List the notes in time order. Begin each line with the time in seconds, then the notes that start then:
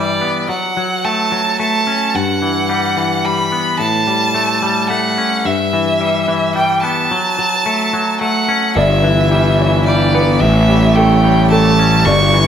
Already playing: G2 E3 G3 D5
0.21 B3
0.49 F#3 F#5
0.77 F#3
1.05 A3 A5
1.32 F#3
1.60 A3 A5
1.87 C#4
2.15 G2 F#5
2.42 E3
2.69 G3
2.97 E3
3.24 G3 B5
3.52 B3
3.79 A2 A5
4.07 G3
4.34 A3
4.62 G3
4.89 A3 F#5
5.18 C#4
5.45 G2 E5
5.73 E3
6.01 G3
6.28 E3
6.55 G3 G5
6.83 B3 A5
7.11 F#3
7.39 F#3
7.66 A3
7.93 F#3
8.21 A3 F#5
8.48 C#4
8.76 G1 G2 G3 E4 B4 D5 E5
9.04 E3
9.31 G3
9.59 E3 C#5
9.86 G3 D5
10.15 B3 B4
10.40 A1 A2 A3 G4 C#5 E5
10.69 G3
10.95 A3 A4 G5
11.24 G3
11.50 A3 A4 A5
11.79 C#4
12.05 G1 G2 G3 D4 F#4 D5 C#6
12.34 E3